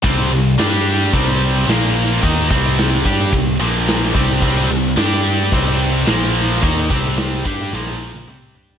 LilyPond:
<<
  \new Staff \with { instrumentName = "Distorted electric guitar" } { \clef bass \time 4/4 \key c \minor \tempo 4 = 109 <c g c'>8 <c g>8 <g d' g'>4 <c g c'>4 <bes, f bes>4 | <ees bes ees'>8 <c g c'>4 <g d' g'>8 <c g>8 <bes, f bes>4 <c g c'>8 | <c g c'>8 <c g>8 <g d' g'>4 <c g c'>4 <bes, f bes>4 | <ees bes ees'>8 <c g c'>4 <g d' g'>8 <bes, f bes>4 <c g c'>8 <g d' g'>8 | }
  \new Staff \with { instrumentName = "Picked electric bass" } { \clef bass \time 4/4 \key c \minor c,8 c,8 g,4 c,4 bes,,4 | ees,8 c,4 g,8 c,8 bes,,4 c,8 | c,8 c,8 g,4 c,4 bes,,4 | ees,8 c,4 g,8 bes,,4 c,8 g,8 | }
  \new DrumStaff \with { instrumentName = "Drums" } \drummode { \time 4/4 <bd cymr>8 cymr8 <cymr sn>8 <cymr sn>8 <bd cymr>8 cymr8 <cymr sn>8 cymr8 | <bd cymr>8 <bd cymr>8 <cymr sn>8 <bd cymr>8 <bd cymr>8 cymr8 <cymr sn>8 <bd cymr>8 | <cymc bd>8 cymr8 <cymr sn>8 <cymr sn>8 <bd cymr>8 cymr8 <cymr sn>8 cymr8 | <bd cymr>8 <bd cymr>8 <cymr sn>8 <bd cymr>8 sn16 sn8 tommh16 toml8 tomfh16 tomfh16 | }
>>